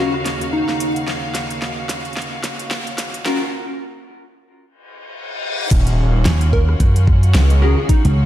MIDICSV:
0, 0, Header, 1, 9, 480
1, 0, Start_track
1, 0, Key_signature, -6, "minor"
1, 0, Tempo, 545455
1, 1187, Time_signature, 4, 2, 24, 8
1, 7264, End_track
2, 0, Start_track
2, 0, Title_t, "Digital synth lead"
2, 0, Program_c, 0, 84
2, 0, Note_on_c, 0, 66, 88
2, 151, Note_off_c, 0, 66, 0
2, 465, Note_on_c, 0, 63, 90
2, 844, Note_off_c, 0, 63, 0
2, 5746, Note_on_c, 0, 70, 96
2, 5911, Note_off_c, 0, 70, 0
2, 6706, Note_on_c, 0, 68, 93
2, 6871, Note_off_c, 0, 68, 0
2, 6946, Note_on_c, 0, 63, 90
2, 7111, Note_off_c, 0, 63, 0
2, 7264, End_track
3, 0, Start_track
3, 0, Title_t, "Clean electric guitar"
3, 0, Program_c, 1, 27
3, 0, Note_on_c, 1, 61, 83
3, 0, Note_on_c, 1, 65, 75
3, 0, Note_on_c, 1, 66, 85
3, 0, Note_on_c, 1, 70, 96
3, 110, Note_off_c, 1, 65, 0
3, 110, Note_off_c, 1, 66, 0
3, 111, Note_off_c, 1, 61, 0
3, 111, Note_off_c, 1, 70, 0
3, 2863, Note_on_c, 1, 70, 105
3, 2868, Note_on_c, 1, 66, 80
3, 2869, Note_on_c, 1, 65, 84
3, 2873, Note_on_c, 1, 61, 82
3, 2990, Note_off_c, 1, 65, 0
3, 2991, Note_off_c, 1, 61, 0
3, 2991, Note_off_c, 1, 70, 0
3, 2992, Note_off_c, 1, 66, 0
3, 6704, Note_on_c, 1, 70, 101
3, 6707, Note_on_c, 1, 66, 86
3, 6711, Note_on_c, 1, 65, 80
3, 6715, Note_on_c, 1, 61, 85
3, 6831, Note_off_c, 1, 61, 0
3, 6831, Note_off_c, 1, 65, 0
3, 6831, Note_off_c, 1, 66, 0
3, 6831, Note_off_c, 1, 70, 0
3, 7264, End_track
4, 0, Start_track
4, 0, Title_t, "String section"
4, 0, Program_c, 2, 48
4, 0, Note_on_c, 2, 39, 76
4, 0, Note_on_c, 2, 49, 64
4, 0, Note_on_c, 2, 66, 65
4, 0, Note_on_c, 2, 77, 84
4, 3070, Note_off_c, 2, 49, 0
4, 3071, Note_off_c, 2, 66, 0
4, 3072, Note_off_c, 2, 77, 0
4, 3073, Note_off_c, 2, 39, 0
4, 5028, Note_on_c, 2, 61, 76
4, 5029, Note_on_c, 2, 51, 76
4, 5030, Note_on_c, 2, 65, 72
4, 5030, Note_on_c, 2, 66, 87
4, 7264, Note_off_c, 2, 51, 0
4, 7264, Note_off_c, 2, 61, 0
4, 7264, Note_off_c, 2, 65, 0
4, 7264, Note_off_c, 2, 66, 0
4, 7264, End_track
5, 0, Start_track
5, 0, Title_t, "Slap bass"
5, 0, Program_c, 3, 36
5, 5508, Note_on_c, 3, 39, 96
5, 5971, Note_off_c, 3, 39, 0
5, 5984, Note_on_c, 3, 42, 94
5, 6449, Note_off_c, 3, 42, 0
5, 7083, Note_on_c, 3, 37, 100
5, 7264, Note_off_c, 3, 37, 0
5, 7264, End_track
6, 0, Start_track
6, 0, Title_t, "Detuned saw bass"
6, 0, Program_c, 4, 39
6, 5027, Note_on_c, 4, 27, 104
6, 5490, Note_off_c, 4, 27, 0
6, 6464, Note_on_c, 4, 37, 95
6, 6822, Note_off_c, 4, 37, 0
6, 7264, End_track
7, 0, Start_track
7, 0, Title_t, "Impact"
7, 0, Program_c, 5, 103
7, 5027, Note_on_c, 5, 60, 75
7, 6947, Note_off_c, 5, 60, 0
7, 7264, End_track
8, 0, Start_track
8, 0, Title_t, "Reverse cymbal"
8, 0, Program_c, 6, 119
8, 4066, Note_on_c, 6, 60, 81
8, 5026, Note_off_c, 6, 60, 0
8, 7264, End_track
9, 0, Start_track
9, 0, Title_t, "Drums"
9, 124, Note_on_c, 9, 37, 38
9, 212, Note_off_c, 9, 37, 0
9, 225, Note_on_c, 9, 38, 61
9, 225, Note_on_c, 9, 42, 78
9, 313, Note_off_c, 9, 38, 0
9, 313, Note_off_c, 9, 42, 0
9, 364, Note_on_c, 9, 42, 54
9, 452, Note_off_c, 9, 42, 0
9, 605, Note_on_c, 9, 38, 58
9, 693, Note_off_c, 9, 38, 0
9, 707, Note_on_c, 9, 42, 83
9, 795, Note_off_c, 9, 42, 0
9, 847, Note_on_c, 9, 42, 55
9, 935, Note_off_c, 9, 42, 0
9, 947, Note_on_c, 9, 38, 68
9, 1035, Note_off_c, 9, 38, 0
9, 1185, Note_on_c, 9, 38, 71
9, 1185, Note_on_c, 9, 42, 80
9, 1273, Note_off_c, 9, 38, 0
9, 1273, Note_off_c, 9, 42, 0
9, 1324, Note_on_c, 9, 42, 54
9, 1412, Note_off_c, 9, 42, 0
9, 1426, Note_on_c, 9, 38, 68
9, 1514, Note_off_c, 9, 38, 0
9, 1666, Note_on_c, 9, 38, 78
9, 1666, Note_on_c, 9, 42, 80
9, 1754, Note_off_c, 9, 38, 0
9, 1754, Note_off_c, 9, 42, 0
9, 1804, Note_on_c, 9, 42, 24
9, 1874, Note_off_c, 9, 42, 0
9, 1874, Note_on_c, 9, 42, 34
9, 1907, Note_on_c, 9, 38, 70
9, 1950, Note_off_c, 9, 42, 0
9, 1950, Note_on_c, 9, 42, 38
9, 1995, Note_off_c, 9, 38, 0
9, 2038, Note_off_c, 9, 42, 0
9, 2144, Note_on_c, 9, 38, 81
9, 2144, Note_on_c, 9, 42, 81
9, 2232, Note_off_c, 9, 38, 0
9, 2232, Note_off_c, 9, 42, 0
9, 2283, Note_on_c, 9, 42, 50
9, 2371, Note_off_c, 9, 42, 0
9, 2384, Note_on_c, 9, 38, 85
9, 2472, Note_off_c, 9, 38, 0
9, 2525, Note_on_c, 9, 42, 38
9, 2613, Note_off_c, 9, 42, 0
9, 2624, Note_on_c, 9, 38, 84
9, 2624, Note_on_c, 9, 42, 83
9, 2712, Note_off_c, 9, 38, 0
9, 2712, Note_off_c, 9, 42, 0
9, 2764, Note_on_c, 9, 42, 54
9, 2852, Note_off_c, 9, 42, 0
9, 2866, Note_on_c, 9, 38, 89
9, 2954, Note_off_c, 9, 38, 0
9, 5027, Note_on_c, 9, 36, 115
9, 5027, Note_on_c, 9, 42, 83
9, 5027, Note_on_c, 9, 49, 103
9, 5115, Note_off_c, 9, 36, 0
9, 5115, Note_off_c, 9, 42, 0
9, 5115, Note_off_c, 9, 49, 0
9, 5163, Note_on_c, 9, 42, 57
9, 5251, Note_off_c, 9, 42, 0
9, 5504, Note_on_c, 9, 38, 122
9, 5504, Note_on_c, 9, 42, 84
9, 5592, Note_off_c, 9, 38, 0
9, 5592, Note_off_c, 9, 42, 0
9, 5641, Note_on_c, 9, 42, 56
9, 5729, Note_off_c, 9, 42, 0
9, 5746, Note_on_c, 9, 36, 62
9, 5834, Note_off_c, 9, 36, 0
9, 5884, Note_on_c, 9, 37, 41
9, 5972, Note_off_c, 9, 37, 0
9, 5984, Note_on_c, 9, 42, 80
9, 5986, Note_on_c, 9, 36, 112
9, 6072, Note_off_c, 9, 42, 0
9, 6074, Note_off_c, 9, 36, 0
9, 6124, Note_on_c, 9, 42, 56
9, 6212, Note_off_c, 9, 42, 0
9, 6225, Note_on_c, 9, 36, 104
9, 6313, Note_off_c, 9, 36, 0
9, 6363, Note_on_c, 9, 42, 38
9, 6451, Note_off_c, 9, 42, 0
9, 6464, Note_on_c, 9, 38, 123
9, 6464, Note_on_c, 9, 42, 88
9, 6552, Note_off_c, 9, 38, 0
9, 6552, Note_off_c, 9, 42, 0
9, 6602, Note_on_c, 9, 42, 54
9, 6690, Note_off_c, 9, 42, 0
9, 6705, Note_on_c, 9, 37, 43
9, 6793, Note_off_c, 9, 37, 0
9, 6944, Note_on_c, 9, 42, 83
9, 6945, Note_on_c, 9, 36, 124
9, 7032, Note_off_c, 9, 42, 0
9, 7033, Note_off_c, 9, 36, 0
9, 7082, Note_on_c, 9, 42, 54
9, 7170, Note_off_c, 9, 42, 0
9, 7264, End_track
0, 0, End_of_file